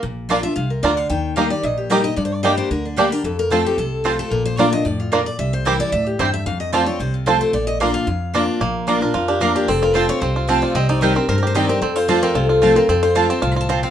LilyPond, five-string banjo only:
\new Staff \with { instrumentName = "Five-string banjo" } { \time 4/4 \key bes \major \tempo 4 = 224 r4 <bes d' f'>8 r4. <bes d' f'>8 r8 | r4 <bes ees' g'>8 r4. <bes ees' g'>8 r8 | r4 <bes d' g'>8 r4. <bes d' g'>8 r8 | r4 <c' f'>8 r4. <c' f'>8 r8 |
r4 <bes d' f'>8 r4. <bes d' f'>8 r8 | r4 <c' e' g'>8 r4. <c' e' g'>8 r8 | r4 <c' f'>8 r4. <c' f'>8 r8 | r4 <bes d' f'>8 r4. <bes d' f'>8 r8 |
bes4 d'8 bes'8 f'8 d'8 bes'8 d'8 | c'8 f'8 c'8 f'8 c'8 f'8 c'8 f'8 | c'8 ees'8 bes'8 c'8 bes'8 g'8 ees'8 c'8 | c'8 f'8 f'8 c'8 f'8 f'8 f'8 c'8 |
c'8 f'8 f'8 c'8 f'8 f'8 f'8 c'8 | }